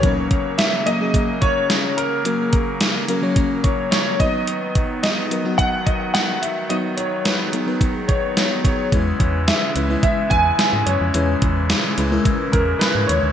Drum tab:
HH |xxxxxxxx|xxxxxxxx|xxxxxxxx|xxxxxxxx|
SD |--o---o-|--o---o-|--o---o-|--o---o-|
BD |oo--oo--|-o--oo-o|-o--oo--|----oo-o|

HH |xxxxxxxx|xxxxxxxx|
SD |--o---o-|--o---o-|
BD |oo--oo--|-o--oo--|